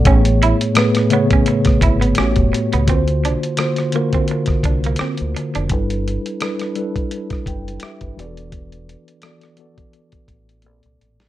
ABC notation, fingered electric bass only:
X:1
M:4/4
L:1/16
Q:"Swing 16ths" 1/4=85
K:A
V:1 name="Fingered electric bass" clef=bass
A,,,3 z6 z G,,,2 A,,, F,,, z C,, | D,,3 z6 z =C,,2 z D,, z ^E,,, | =G,,,3 z6 z F,,,2 z G,,, E,,,2- | E,,,3 z6 z A,,,2 _B,,, =C,, A,,,2 |]